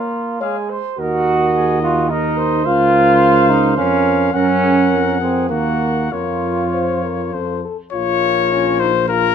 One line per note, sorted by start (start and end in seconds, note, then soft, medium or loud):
0.00 0.42 A#3 loud
0.00 0.40 F4 medium
0.40 0.79 G#3 medium
0.40 0.71 G#4 medium
0.40 0.56 C#5 medium
0.40 0.58 F5 medium
0.70 1.00 C5 medium
0.98 2.67 D#2 medium
0.98 1.79 F#4 loud
0.98 2.06 A#4 medium
0.98 1.36 A#4 medium
0.98 2.07 D#5 medium
1.55 1.81 G#4 medium
1.82 2.12 F4 loud
1.82 2.11 F#4 medium
2.10 2.66 D#4 loud
2.10 2.39 A#4 medium
2.10 2.65 A#4 medium
2.10 2.68 D#5 medium
2.38 4.34 C5 loud
2.66 3.80 C#2 medium
2.66 3.51 F4 loud
2.66 3.75 A#4 medium
2.66 3.77 F5 medium
3.50 3.77 D#4 loud
3.77 4.34 F2 medium
3.77 4.34 C#4 loud
3.77 4.34 A#4 medium
3.77 4.35 F5 medium
4.34 4.93 F#2 medium
4.34 5.19 C#4 loud
4.34 4.47 A#4 medium
4.34 5.47 A#4 medium
4.34 5.49 F#5 medium
4.63 4.76 G#4 medium
4.90 5.51 F2 medium
4.90 5.19 A#4 medium
5.20 5.49 C4 medium
5.20 5.49 G#4 medium
5.49 6.12 D#2 medium
5.49 6.11 A#3 medium
5.49 6.11 F#4 medium
5.49 6.11 A#4 medium
5.49 6.14 F#5 medium
6.12 7.31 F2 medium
6.12 7.61 F4 medium
6.12 6.66 A#4 medium
6.12 7.35 C#5 medium
6.74 7.05 C5 medium
7.04 7.35 A#4 medium
7.33 7.63 F2 medium
7.33 7.64 A4 medium
7.33 7.64 C5 medium
7.65 7.78 A4 medium
7.93 9.35 A#1 medium
7.93 9.04 F4 medium
7.93 8.53 F4 medium
7.93 9.04 A#4 medium
7.93 8.81 C#5 loud
8.52 8.80 C#4 medium
8.80 8.93 D#4 medium
8.80 9.08 C5 medium
9.08 9.35 F4 medium
9.08 9.35 A#4 loud
9.08 9.35 A#4 medium